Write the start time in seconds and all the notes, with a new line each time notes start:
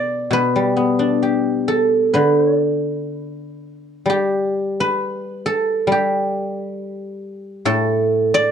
Already playing: B2 B4 D5
0.31 B2 B4
0.56 G3
0.77 B3
0.99 D4
1.23 G4
1.68 A4
2.14 D3 B4
2.36 C5
2.58 D5
4.06 G3
4.10 G4
4.80 B4
5.46 A4
5.87 G3
5.92 G4
7.65 A2 A4
8.34 D5